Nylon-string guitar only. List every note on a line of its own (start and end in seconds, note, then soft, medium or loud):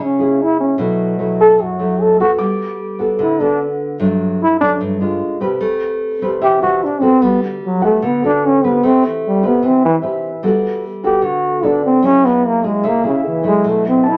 0.00 0.77 C#3 medium
0.19 0.76 A#3 medium
0.19 0.76 E4 medium
0.19 0.76 G#4 medium
0.78 1.57 B2 medium
0.78 1.16 F#3 medium
0.78 1.16 A3 medium
0.78 1.16 E4 medium
1.19 1.76 F#3 medium
1.19 1.76 A3 soft
1.19 1.77 E4 medium
1.58 2.37 F#2 medium
1.79 2.16 F#3 medium
1.79 2.16 A3 medium
1.79 2.16 E4 medium
2.20 2.77 B3 medium
2.20 2.77 F#4 medium
2.20 2.77 A4 medium
2.39 3.17 G3 medium
2.99 3.36 B3 medium
2.99 3.36 F#4 soft
2.99 3.37 A4 medium
3.19 3.98 D3 medium
3.40 3.97 B3 medium
3.40 3.97 F#4 soft
3.40 3.97 A4 medium
4.00 4.78 G2 medium
4.00 4.40 F#3 medium
4.00 4.40 A3 medium
4.00 4.40 D4 medium
4.62 4.98 F#3 medium
4.62 4.98 A3 medium
4.62 4.98 D4 medium
4.81 5.19 G2 medium
5.00 5.37 G#3 medium
5.00 5.38 D4 medium
5.00 5.38 F4 medium
5.40 6.18 C4 medium
5.40 6.18 G4 medium
5.40 6.18 B4 medium
5.61 6.39 A3 medium
6.22 6.58 C4 medium
6.22 6.58 G4 medium
6.22 6.59 B4 medium
6.42 6.80 E3 medium
6.62 6.99 C4 medium
6.62 6.99 G4 medium
6.62 6.99 A#4 medium
7.01 7.78 B3 medium
7.01 7.79 F#4 medium
7.01 7.79 A4 medium
7.22 8.00 G3 medium
7.81 8.18 B3 medium
7.81 8.19 F#4 medium
7.81 8.19 A4 medium
8.02 8.80 D3 medium
8.23 8.60 B3 medium
8.23 8.60 F#4 soft
8.23 8.60 A4 medium
8.63 9.40 C4 medium
8.63 9.40 G4 medium
8.63 9.40 B4 medium
8.83 9.61 A3 medium
9.43 10.00 C4 medium
9.43 10.00 G4 medium
9.43 10.00 B4 medium
9.62 10.41 E3 medium
10.02 10.28 C4 medium
10.02 10.29 G4 medium
10.02 10.29 B4 medium
10.43 11.21 G3 medium
10.43 10.83 B3 medium
10.43 10.83 F#4 medium
10.43 10.83 A4 medium
11.04 11.60 B3 medium
11.04 11.61 F#4 medium
11.04 11.61 A4 medium
11.22 12.01 D3 medium
11.62 11.89 B3 medium
11.62 11.89 F#4 medium
11.62 11.89 A4 medium
12.02 12.81 F#3 medium
12.02 12.60 A#3 medium
12.02 12.60 E4 medium
12.02 12.61 G#4 medium
12.63 13.01 A#3 medium
12.63 13.01 E4 medium
12.63 13.01 G#4 medium
12.83 13.62 C#3 medium
13.03 13.41 A#3 medium
13.03 13.41 E4 medium
13.03 13.41 G#4 medium
13.43 14.17 F#3 medium
13.43 14.17 A3 medium
13.43 14.17 E4 medium
13.64 14.17 B2 medium